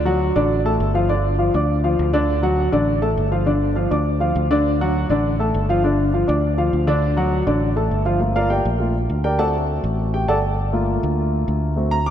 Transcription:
0.00 0.31 D2 loud
0.05 0.30 F#3 medium
0.05 0.30 F#4 medium
0.05 0.31 F#5 medium
0.36 0.77 A1 medium
0.36 0.60 D3 medium
0.36 0.60 D4 medium
0.36 0.60 D5 medium
0.65 0.90 A3 medium
0.65 0.90 A4 medium
0.65 0.90 A5 medium
0.80 1.49 G1 medium
0.94 1.07 F3 medium
0.94 1.07 F4 medium
0.94 1.07 F5 medium
1.09 1.34 D3 medium
1.09 1.34 D4 medium
1.09 1.34 D5 medium
1.38 1.51 F3 medium
1.38 1.51 F4 medium
1.38 1.52 F5 medium
1.54 1.96 D2 loud
1.54 1.79 D4 medium
1.54 1.79 D5 medium
1.54 1.79 D6 medium
1.84 2.08 F3 medium
1.84 2.09 F4 medium
1.84 2.08 F5 medium
1.99 2.68 D2 loud
2.13 2.38 D3 loud
2.13 2.38 D4 loud
2.13 2.38 D5 medium
2.43 2.67 F#3 medium
2.43 2.68 F#4 medium
2.43 2.68 F#5 medium
2.72 3.14 A1 medium
2.72 2.97 D3 medium
2.72 2.97 D4 medium
2.72 2.97 D5 medium
3.02 3.26 A3 medium
3.02 3.27 A4 medium
3.02 3.27 A5 medium
3.17 3.86 G1 loud
3.32 3.44 F3 medium
3.32 3.44 F4 medium
3.32 3.44 F5 medium
3.46 3.71 D3 medium
3.46 3.71 D4 medium
3.46 3.71 D5 medium
3.75 3.88 F3 medium
3.75 3.88 F4 medium
3.75 3.89 F5 medium
3.91 4.33 D2 loud
3.91 4.15 D4 medium
3.91 4.16 D5 medium
3.91 4.16 D6 medium
4.20 4.45 F3 medium
4.20 4.45 F4 medium
4.20 4.45 F5 medium
4.35 5.04 D2 loud
4.51 4.75 D3 medium
4.51 4.75 D4 loud
4.51 4.75 D5 loud
4.81 5.05 F#3 medium
4.81 5.05 F#4 medium
4.81 5.05 F#5 medium
5.10 5.51 A1 loud
5.10 5.34 D3 medium
5.10 5.35 D4 medium
5.10 5.35 D5 medium
5.39 5.64 A3 medium
5.39 5.64 A4 medium
5.39 5.64 A5 medium
5.54 6.23 G1 loud
5.69 5.81 F3 medium
5.69 5.81 F4 medium
5.69 5.82 F5 medium
5.84 6.08 D3 medium
5.84 6.08 D4 medium
5.84 6.09 D5 medium
6.13 6.26 F3 medium
6.13 6.26 F4 medium
6.13 6.26 F5 medium
6.28 6.70 D2 loud
6.28 6.52 D4 medium
6.28 6.52 D5 medium
6.28 6.53 D6 medium
6.58 6.82 F3 medium
6.58 6.82 F4 medium
6.58 6.82 F5 medium
6.73 7.41 D2 loud
6.87 7.12 D3 medium
6.87 7.12 D4 loud
6.87 7.12 D5 medium
7.17 7.41 F#3 medium
7.17 7.41 F#4 medium
7.17 7.42 F#5 medium
7.47 7.88 A1 loud
7.47 7.71 D3 medium
7.47 7.71 D4 medium
7.47 7.71 D5 medium
7.76 8.00 A3 medium
7.76 8.01 A4 medium
7.76 8.01 A5 medium
7.91 8.60 G1 medium
8.05 8.18 F3 medium
8.05 8.18 F4 medium
8.05 8.18 F5 medium
8.20 8.78 A3 medium
8.20 8.78 A#3 soft
8.20 8.35 F4 medium
8.36 8.50 F4 medium
8.36 8.49 A#4 medium
8.36 8.49 D5 medium
8.36 8.50 F5 medium
8.50 8.65 G4 medium
8.50 8.65 A#4 medium
8.50 8.65 D5 medium
8.50 8.65 G5 medium
8.65 9.07 A#1 medium
8.79 8.93 A3 soft
8.79 8.93 A#3 soft
8.79 8.93 F4 medium
9.09 9.78 D2 medium
9.24 9.39 G4 medium
9.24 9.39 A#4 medium
9.24 9.38 D5 medium
9.24 9.39 G5 medium
9.38 10.53 A3 medium
9.38 10.54 C4 soft
9.38 10.54 F#4 medium
9.38 9.54 A4 medium
9.38 9.54 D5 medium
9.38 9.54 F#5 medium
9.38 9.53 A5 medium
9.84 10.25 A1 loud
10.14 10.28 G4 medium
10.14 10.28 G5 medium
10.28 10.97 G1 medium
10.28 10.38 A4 medium
10.28 10.37 D5 medium
10.28 10.37 F#5 medium
10.28 10.37 A5 medium
10.72 11.72 A3 medium
10.72 11.73 A#3 medium
10.72 11.73 F4 medium
11.03 11.44 D2 loud
11.48 12.10 D2 medium
11.76 11.96 A3 medium
11.76 11.97 C4 soft
11.76 11.97 F#4 medium
11.91 12.06 A#5 loud
12.06 12.10 D6 loud

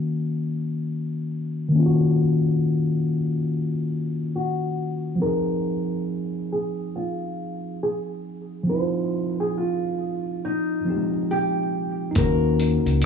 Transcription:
0.00 1.66 D#3 medium
0.00 1.68 A#3 medium
0.00 1.70 C#4 soft
0.00 1.72 F#4 medium
0.00 1.25 A#4 medium
1.69 5.14 D#3 medium
1.69 5.16 A#3 medium
1.76 5.18 C#4 medium
1.76 1.84 F4 medium
1.86 5.23 F#4 medium
4.36 5.21 F#4 medium
5.16 8.62 F3 medium
5.16 8.63 C4 soft
5.22 8.65 D#4 medium
5.22 6.04 A#4 medium
5.26 8.67 G#4 medium
6.52 6.96 G#4 medium
6.96 7.78 F4 medium
7.83 8.69 G#4 medium
8.63 10.79 F3 medium
8.63 10.81 C4 soft
8.69 10.83 D#4 medium
8.69 9.40 C5 medium
8.74 8.79 E4 medium
8.81 10.88 F4 medium
9.40 9.55 G#4 medium
9.57 10.44 F4 medium
10.45 11.70 D#4 medium
10.85 12.15 F3 soft
10.85 12.16 C4 soft
10.85 12.10 D#4 soft
10.90 10.96 G4 soft
10.96 12.21 G#3 soft
11.31 12.13 G4 medium
12.11 13.05 D#4 medium
12.15 12.77 D#2 medium
12.15 13.05 A#3 medium
12.15 13.05 C#4 medium
12.15 13.00 A#4 loud
12.15 kick loud
12.15 closed hi-hat medium
12.22 13.05 F#4 medium
12.59 closed hi-hat medium
12.86 13.05 C#2 medium
12.86 closed hi-hat soft
13.02 closed hi-hat medium

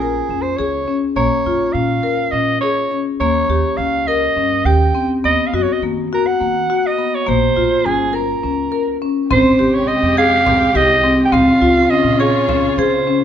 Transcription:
0.00 0.20 A#1 medium
0.00 0.43 G#4 medium
0.00 0.20 A#4 medium
0.29 0.54 F2 medium
0.29 0.49 C#4 soft
0.42 0.58 C5 medium
0.57 0.83 C#2 medium
0.57 0.77 G#4 medium
0.57 1.02 C#5 medium
0.88 1.06 C#4 medium
1.16 1.29 A#1 medium
1.16 1.35 A#3 medium
1.16 1.74 C#5 medium
1.46 1.58 F2 medium
1.46 1.65 F4 medium
1.73 1.99 A#2 medium
1.73 1.93 C#4 medium
1.73 2.33 F5 medium
2.03 2.22 A#4 medium
2.32 2.57 A#2 medium
2.32 2.52 C#4 medium
2.32 2.60 D#5 medium
2.61 2.81 G#4 medium
2.61 3.02 C#5 medium
2.91 3.10 C#4 medium
3.20 3.45 D#2 medium
3.20 3.39 A#3 medium
3.20 3.79 C#5 medium
3.49 3.62 D#2 medium
3.49 3.68 G4 medium
3.77 4.27 C#2 medium
3.77 3.96 C#4 medium
3.77 4.09 F5 medium
4.07 4.26 A#4 medium
4.07 4.67 D#5 medium
4.37 4.61 G2 medium
4.37 4.55 C#4 medium
4.65 4.90 D#2 medium
4.65 4.84 G4 medium
4.65 5.10 G5 medium
4.95 5.13 C4 medium
5.24 5.36 D#2 medium
5.24 5.42 B3 medium
5.24 5.49 D#5 medium
5.47 5.56 F5 medium
5.53 5.65 F#2 medium
5.53 5.72 F#4 medium
5.53 5.64 D#5 medium
5.62 5.74 C#5 medium
5.73 5.82 D#5 medium
5.82 6.06 D#3 medium
5.82 6.01 A#3 medium
6.13 6.30 F#4 medium
6.13 6.28 A#4 medium
6.27 6.88 F#5 medium
6.41 6.65 D#3 medium
6.41 6.59 A#3 medium
6.70 6.88 F#4 medium
6.87 7.17 D#5 medium
6.98 7.17 B3 medium
7.15 7.30 C#5 medium
7.27 7.52 A#1 medium
7.27 7.45 A#3 medium
7.27 7.87 C5 medium
7.56 7.69 A#1 medium
7.56 7.74 F4 medium
7.85 8.34 G1 medium
7.85 8.04 C#4 medium
7.85 8.16 G#4 medium
8.13 8.32 A#4 medium
8.13 9.02 A#4 medium
8.43 8.68 C#2 medium
8.43 8.61 C#4 medium
8.72 8.90 A#4 medium
9.02 9.20 C#4 medium
9.29 9.43 G#1 medium
9.29 11.31 C3 medium
9.29 11.31 G#3 medium
9.29 9.49 C4 medium
9.29 11.31 G4 medium
9.29 9.76 C5 medium
9.29 frame drum medium
9.59 9.84 G#1 medium
9.59 9.77 G4 medium
9.74 9.89 C#5 medium
9.88 10.06 C4 medium
9.88 10.17 D#5 medium
10.03 10.63 F2 medium
10.17 10.35 G#4 medium
10.17 10.78 F5 loud
10.46 10.64 C4 medium
10.46 frame drum medium
10.75 11.23 C2 medium
10.75 10.93 G4 medium
10.75 11.19 D#5 medium
11.04 11.22 C4 medium
11.25 11.34 G5 medium
11.32 11.45 C#2 medium
11.32 13.24 C#3 medium
11.32 11.51 C4 medium
11.32 13.24 C#4 medium
11.32 13.24 F4 medium
11.32 11.92 F5 loud
11.32 frame drum medium
11.61 11.86 C#2 medium
11.61 11.80 F4 medium
11.90 12.09 C#4 medium
11.90 12.20 D#5 medium
12.04 12.65 A#2 medium
12.20 12.38 G#4 medium
12.20 12.80 C#5 medium
12.20 frame drum soft
12.49 12.67 C#4 medium
12.49 frame drum medium
12.78 13.24 C#3 medium
12.78 12.97 G#4 medium
12.78 13.22 C5 medium
13.07 13.24 C#4 medium

